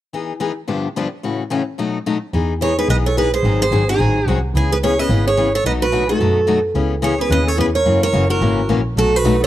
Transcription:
0.13 steel-string acoustic guitar E3 B3 D#4 G#4
0.40 steel-string acoustic guitar E3 B3 D#4 G#4
0.68 steel-string acoustic guitar G2 D3 F3 B3 D4 G4
0.96 steel-string acoustic guitar G2 D3 F3 B3 D4 G4
1.23 steel-string acoustic guitar A2 C#3 E3 A3 C#4 F#4
1.50 steel-string acoustic guitar A2 C#3 E3 A3 C#4 F#4
1.78 steel-string acoustic guitar B2 F#3 A3 D#4 F#4
2.06 steel-string acoustic guitar B2 F#3 A3 D#4 F#4
2.33 double bass E2, steel-string acoustic guitar E3 B3 D#4 G#4
2.61 steel-string acoustic guitar E3 B3 D#4 G#4 C#5, clarinet G#4
2.78 steel-string acoustic guitar B3 D#4 G#4 B4, clarinet G#4
2.88 double bass B1, steel-string acoustic guitar E3 B3 D#4 G#4 D#5, clarinet B4
3.06 clarinet A4, steel-string acoustic guitar C#5
3.17 steel-string acoustic guitar E3 B3 D#4 G#4 B4, clarinet G#4
3.34 clarinet G#4, steel-string acoustic guitar C5
3.43 double bass G#1, steel-string acoustic guitar D#3 F#3 C4 D#4 G#4
3.62 clarinet G#4, steel-string acoustic guitar C5
3.71 double bass G#1, steel-string acoustic guitar D#3 F#3 C4 D#4 G#4
3.88 steel-string acoustic guitar C4 D#4 G#4, clarinet D#4
3.99 double bass A1, steel-string acoustic guitar D#3 F#3 C4 D#4 G#4
4.26 double bass C2, steel-string acoustic guitar D#3 F#3 C4 D#4 G#4, clarinet C#4
4.54 double bass C#2, steel-string acoustic guitar C#3 E3 B3 C#4 G#4, clarinet E4
4.72 clarinet G#4, steel-string acoustic guitar B4
4.83 steel-string acoustic guitar C#3 E3 B3 C#4 G#4 C#5, clarinet G#4
4.98 steel-string acoustic guitar B3 C#4 G#4 D#5, clarinet B4
5.09 double bass G#1, steel-string acoustic guitar C#3 E3 B3 C#4 G#4
5.27 clarinet G#4, steel-string acoustic guitar C#5
5.37 steel-string acoustic guitar C#3 E3 B3 C#4 G#4
5.55 clarinet A4, steel-string acoustic guitar C#5
5.64 double bass B1, steel-string acoustic guitar B2 F#3 A3 D#4 F#4 D#5, clarinet B4
5.82 clarinet F#4, steel-string acoustic guitar B4
5.92 steel-string acoustic guitar B2 F#3 A3 D#4 F#4
6.09 steel-string acoustic guitar A3 D#4 F#4 A4, clarinet F#4
6.20 double bass F#2, steel-string acoustic guitar B2 F#3 A3 D#4 F#4
6.47 steel-string acoustic guitar B2 F#3 A3 D#4 F#4
6.75 double bass C#2, steel-string acoustic guitar C#3 E3 B3 C#4 G#4
7.02 steel-string acoustic guitar C#3 E3 B3 C#4 G#4 C#5, clarinet G#4
7.18 steel-string acoustic guitar B3 C#4 G#4 B4, clarinet G#4
7.30 double bass D#2, steel-string acoustic guitar C#3 E3 B3 C#4 G#4 D#5, clarinet B4
7.47 clarinet A4, steel-string acoustic guitar C#5
7.57 double bass E2, steel-string acoustic guitar C#3 E3 B3 C#4 G#4 B4, clarinet G#4
7.75 clarinet A#4, steel-string acoustic guitar C#5
7.85 double bass F#2, steel-string acoustic guitar C#3 E3 A#3 C#4 F#4
8.03 clarinet A#4, steel-string acoustic guitar C#5
8.13 double bass F#1, steel-string acoustic guitar C#3 E3 A#3 C#4 F#4
8.30 steel-string acoustic guitar A#3 C#4 F#4 A#4, clarinet F#4
8.41 double bass G#1, steel-string acoustic guitar C#3 E3 A#3 C#4 F#4
8.69 double bass A#1, steel-string acoustic guitar C#3 E3 A#3 C#4 F#4
8.96 double bass B1, steel-string acoustic guitar B2 F#3 A3 D#4 F#4 A4, clarinet F#4
9.14 clarinet F#4, steel-string acoustic guitar B4
9.24 double bass B1, steel-string acoustic guitar B2 F#3 A3 D#4 F#4
9.40 steel-string acoustic guitar A3 D#4 F#4 C#5, clarinet A4

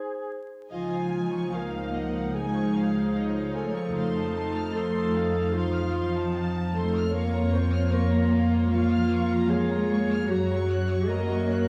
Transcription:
Already playing: clarinet D#4, oboe G#4, flute C5
0.70 double bass section C#2, cello section F3, viola section F3 D#4, clarinet F4, violin section D#5 F5 G#5
0.91 violin section F5
1.10 violin section G#5
1.33 violin section C#6
1.52 cello section A#3, clarinet A#4, violin section F5 G#5
1.72 violin section F5
1.92 violin section D#5 F#5
2.12 violin section F5
2.34 cello section G#3, clarinet G#4, violin section G#5
2.54 violin section C#6
2.75 violin section F5 G#5
2.96 violin section F5
3.15 violin section C#5 D#5
3.35 violin section F5
3.55 cello section A3, clarinet A4, violin section G#5
3.75 violin section C#6
3.94 double bass section F2, violin section C5 F5 C6
4.16 violin section A5
4.34 violin section A5 C6
4.56 violin section F6
4.74 cello section A3, clarinet A4, violin section C6
4.97 violin section A5
5.15 violin section F5
5.37 violin section A5
5.54 cello section F3, clarinet F4, violin section C6
5.74 violin section F6
5.93 violin section C6
6.15 violin section A5
6.35 violin section F5 A5
6.57 violin section A5
6.74 cello section A3, clarinet A4, violin section C5 C6
6.97 violin section F6
7.14 viola section A#3 F4, cello section A#3, clarinet A#4, violin section C#5 F5 C#6
7.34 violin section A#5
7.53 cello section C4, clarinet C5, violin section C#6
7.73 violin section F6
7.92 cello section A#3, clarinet A#4, violin section C#6
8.12 violin section A#5
8.32 violin section F5
8.51 violin section A#5
8.71 cello section F3, clarinet F4, violin section F5 C#6
8.90 violin section F6
9.12 violin section C#6
9.32 violin section A#5
9.50 cello section G#3, clarinet G#4, violin section C#5 F5
9.71 violin section A#5
9.90 violin section C#6
10.12 violin section F6
10.29 double bass section F#2, cello section F#3, viola section F#3 F#4, clarinet F#4, violin section A#5
10.50 violin section C#6
10.71 violin section F#6
10.90 violin section C#6
11.08 cello section A#3, clarinet A#4, violin section D#5 A#5
11.29 violin section C#6
11.48 violin section C#5 F#6

